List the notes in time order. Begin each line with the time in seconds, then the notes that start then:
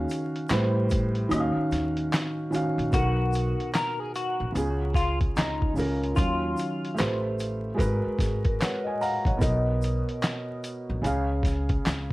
Already playing: D#3 C#4 F#4 F5
0.09 closed hi-hat, shaker
0.36 closed hi-hat
0.49 A1 A2 G3 B4, snare, clap, closed hi-hat, shaker
0.54 C5
0.90 kick, closed hi-hat, shaker
1.15 closed hi-hat
1.29 D#2 D#3 C#4 F#4, closed hi-hat, high woodblock, shaker
1.34 D#5
1.40 F5
1.56 muted upright bass stroke
1.72 D#2, snare, closed hi-hat, shaker
1.97 closed hi-hat
2.13 snare, clap, closed hi-hat, shaker
2.51 D#3 C#4 F#4, shaker
2.55 F5, closed hi-hat
2.78 A#1, closed hi-hat
2.90 B1 B2 B3 D#4 F#4, kick, closed hi-hat, shaker
2.95 A#4
3.33 closed hi-hat, shaker
3.60 closed hi-hat
3.74 A#4, snare, clap, closed hi-hat, shaker
4.00 G#4
4.15 F#4, closed hi-hat, shaker
4.40 A#1
4.52 C#2 C#3 B3 F4, closed hi-hat, shaker
4.57 C#4 G#4
4.94 F4, kick, snare, closed hi-hat, shaker
5.21 kick, closed hi-hat
5.36 C#2 D#4, snare, clap, closed hi-hat, shaker
5.62 kick
5.74 C#2 C#3 C#4 F4, shaker
5.78 A#4, open hi-hat
6.03 closed hi-hat
6.15 D#2 D#3 C#4 F4, kick, closed hi-hat, shaker
6.20 F#3
6.57 closed hi-hat, shaker
6.85 closed hi-hat
6.95 A3 G4 B4, shaker
6.99 A1 C5, snare, clap, closed hi-hat
7.39 closed hi-hat, shaker
7.74 G#3 F#4 A#4
7.78 G#1 B4, kick, closed hi-hat, shaker
8.06 muted upright bass stroke
8.19 G#1 G#4, kick, snare, closed hi-hat, shaker
8.45 A#4, kick, closed hi-hat
8.60 B4 C#5 F#5, snare, clap, closed hi-hat, shaker
8.84 D#5 G#5
9.01 F5 F#5 A#5, open hi-hat, shaker
9.25 A#1 C#5 D#5 F#5, kick, closed hi-hat
9.37 B2 B3 A#4, shaker
9.41 B1 D#5, kick, closed hi-hat
9.82 closed hi-hat, shaker
10.09 closed hi-hat
10.22 snare, clap, closed hi-hat, shaker
10.64 closed hi-hat, shaker
10.89 A#1
11.02 C#2 C#3 C#4 G#4, closed hi-hat, shaker
11.06 F5
11.43 kick, snare, closed hi-hat, shaker
11.69 kick, closed hi-hat
11.86 C#2, snare, clap, closed hi-hat, shaker